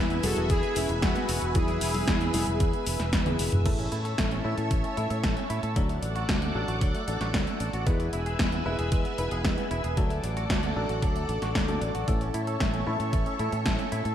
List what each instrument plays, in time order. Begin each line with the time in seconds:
Already playing: fingered electric bass E2, grand piano E3 G#3 B3 G#4, analog polysynth B3 E4, string machine B4 E5 G#5 E6
0.10 closed hi-hat, cabasa
0.23 fingered electric bass E1, grand piano E3 G#3 B3 G#4, analog polysynth F#4 A4, open hi-hat, high conga, cabasa
0.37 fingered electric bass E1, closed hi-hat, cabasa
0.50 fingered electric bass E2, analog polysynth E4 G#4, kick, closed hi-hat, cabasa
0.63 closed hi-hat, cabasa
0.76 fingered electric bass E1, grand piano E3 G#3 B3 G#4, analog polysynth C#4 E4, open hi-hat, cabasa
0.89 fingered electric bass E1, closed hi-hat, cabasa
1.02 fingered electric bass E2, analog polysynth B3 F#4, kick, snare, closed hi-hat, cabasa
1.16 snare, closed hi-hat, cabasa
1.29 fingered electric bass E1, open hi-hat, cabasa
1.42 fingered electric bass E1, closed hi-hat, cabasa
1.55 fingered electric bass E2, grand piano E3 G#3 B3 G#4, analog polysynth E4 G#4, kick, closed hi-hat, high conga, cabasa
1.68 closed hi-hat, cabasa
1.81 fingered electric bass E1, open hi-hat, cabasa
1.94 open hi-hat, high conga, cabasa
2.08 fingered electric bass E2, kick, snare, closed hi-hat, cabasa
2.21 closed hi-hat, cabasa
2.34 fingered electric bass E1, grand piano E3 G#3 B3 G#4, open hi-hat, high conga, cabasa
2.47 fingered electric bass E1, closed hi-hat, cabasa
2.60 fingered electric bass E2, kick, closed hi-hat, cabasa
2.73 closed hi-hat, cabasa
2.86 fingered electric bass E1, open hi-hat, cabasa
3.00 fingered electric bass E1, snare, closed hi-hat, cabasa
3.13 fingered electric bass E2, kick, snare, closed hi-hat, high tom, cabasa
3.26 grand piano E3 G#3 B3 G#4, closed hi-hat, high tom, cabasa
3.39 fingered electric bass E1, open hi-hat, cabasa
3.52 fingered electric bass E1, closed hi-hat, mid tom, cabasa
3.66 fingered electric bass A1, grand piano E3 A3 C#4 A4, clean electric guitar A3, string machine C#5 E5 A5 E6, kick, closed hi-hat, crash
3.79 clean electric guitar C#4, closed hi-hat
3.92 fingered electric bass A2, clean electric guitar E4, closed hi-hat
4.05 clean electric guitar A4, closed hi-hat
4.18 fingered electric bass A1, clean electric guitar A3, kick, snare, closed hi-hat
4.31 clean electric guitar C#4, closed hi-hat
4.45 fingered electric bass A2, grand piano E3 A3 C#4 A4, clean electric guitar E4
4.58 fingered electric bass A2, clean electric guitar A4, closed hi-hat
4.71 fingered electric bass A1, clean electric guitar A3, kick, closed hi-hat
4.84 clean electric guitar C#4, closed hi-hat
4.97 fingered electric bass A2, grand piano E3 A3 C#4 A4, clean electric guitar E4, closed hi-hat
5.10 fingered electric bass A2, clean electric guitar A4, closed hi-hat
5.23 fingered electric bass A1, clean electric guitar A3, kick, snare, closed hi-hat
5.37 clean electric guitar C#4, closed hi-hat
5.50 fingered electric bass A2, clean electric guitar E4, closed hi-hat
5.63 fingered electric bass A2, clean electric guitar A4, closed hi-hat
5.76 fingered electric bass D2, clean electric guitar F#3, grand piano F#3 A3 D4 A4, string machine A4 D5 F#5 D6, kick, closed hi-hat
5.89 clean electric guitar A3, closed hi-hat
6.02 fingered electric bass A1, clean electric guitar D4, closed hi-hat
6.16 clean electric guitar F#4, closed hi-hat
6.29 fingered electric bass D2, clean electric guitar F#3, kick, snare, closed hi-hat
6.42 clean electric guitar A3, closed hi-hat
6.55 fingered electric bass A1, grand piano F#3 A3 D4 A4, clean electric guitar D4
6.68 fingered electric bass A1, clean electric guitar F#4, closed hi-hat
6.81 fingered electric bass D2, clean electric guitar F#3, kick, closed hi-hat
6.95 clean electric guitar A3, closed hi-hat
7.08 fingered electric bass A1, grand piano F#3 A3 D4 A4, clean electric guitar D4, closed hi-hat
7.21 fingered electric bass A1, clean electric guitar F#4, snare, closed hi-hat
7.34 fingered electric bass D2, clean electric guitar F#3, kick, snare, closed hi-hat
7.47 clean electric guitar A3, closed hi-hat
7.60 fingered electric bass A1, clean electric guitar D4, closed hi-hat
7.73 fingered electric bass A1, clean electric guitar F#4, closed hi-hat
7.87 fingered electric bass E2, grand piano G#3 B3 E4 B4, clean electric guitar G#3, string machine B4 E5 G#5 E6, kick, closed hi-hat
8.00 clean electric guitar B3, closed hi-hat
8.13 fingered electric bass E1, clean electric guitar E4, closed hi-hat
8.26 clean electric guitar G#4, closed hi-hat
8.39 fingered electric bass E2, clean electric guitar G#3, kick, snare, closed hi-hat
8.52 clean electric guitar B3, closed hi-hat
8.66 fingered electric bass E1, grand piano G#3 B3 E4 B4, clean electric guitar E4
8.79 fingered electric bass E1, clean electric guitar G#4, closed hi-hat
8.92 fingered electric bass E2, clean electric guitar G#3, kick, closed hi-hat
9.05 clean electric guitar B3, closed hi-hat
9.18 fingered electric bass E1, grand piano G#3 B3 E4 B4, clean electric guitar E4, closed hi-hat
9.31 fingered electric bass E1, clean electric guitar G#4, closed hi-hat
9.44 fingered electric bass E2, clean electric guitar G#3, kick, snare, closed hi-hat
9.58 clean electric guitar B3, closed hi-hat
9.71 fingered electric bass E1, clean electric guitar E4, closed hi-hat
9.84 fingered electric bass E1, clean electric guitar G#4, closed hi-hat
9.97 fingered electric bass D2, grand piano F#3 A3 D4 A4, clean electric guitar F#3, string machine A4 D5 F#5 D6, kick, closed hi-hat
10.10 clean electric guitar A3, closed hi-hat
10.24 fingered electric bass A1, clean electric guitar D4, closed hi-hat
10.37 clean electric guitar F#4, closed hi-hat
10.50 fingered electric bass D2, clean electric guitar F#3, kick, snare, closed hi-hat
10.63 clean electric guitar A3, closed hi-hat
10.76 fingered electric bass A1, grand piano F#3 A3 D4 A4, clean electric guitar D4
10.89 fingered electric bass A1, clean electric guitar F#4, closed hi-hat
11.02 fingered electric bass D2, clean electric guitar F#3, kick, closed hi-hat
11.16 clean electric guitar A3, closed hi-hat
11.29 fingered electric bass A1, clean electric guitar D4, closed hi-hat
11.42 fingered electric bass A1, clean electric guitar F#4, snare, closed hi-hat
11.55 fingered electric bass D2, clean electric guitar F#3, kick, snare, closed hi-hat
11.68 grand piano F#3 A3 D4 A4, clean electric guitar A3, closed hi-hat
11.82 fingered electric bass A1, clean electric guitar D4, closed hi-hat
11.95 fingered electric bass A1, clean electric guitar F#4, closed hi-hat
12.08 fingered electric bass A1, grand piano E3 A3 C#4 A4, clean electric guitar A3, string machine A4 C#5 E5 C#6, kick, closed hi-hat
12.21 clean electric guitar C#4, closed hi-hat
12.34 fingered electric bass A2, clean electric guitar E4, closed hi-hat
12.47 clean electric guitar A4, closed hi-hat
12.60 fingered electric bass A1, clean electric guitar A3, kick, snare, closed hi-hat
12.74 clean electric guitar C#4, closed hi-hat
12.87 fingered electric bass A2, grand piano E3 A3 C#4 A4, clean electric guitar E4
13.00 fingered electric bass A2, clean electric guitar A4, closed hi-hat
13.13 fingered electric bass A1, clean electric guitar A3, kick, closed hi-hat
13.26 clean electric guitar C#4, closed hi-hat
13.39 fingered electric bass A2, grand piano E3 A3 C#4 A4, clean electric guitar E4, closed hi-hat
13.52 fingered electric bass A2, clean electric guitar A4, closed hi-hat
13.66 fingered electric bass A1, clean electric guitar A3, kick, snare, closed hi-hat
13.79 clean electric guitar C#4, closed hi-hat
13.92 fingered electric bass A2, clean electric guitar E4, closed hi-hat
14.05 fingered electric bass A2, clean electric guitar A4, closed hi-hat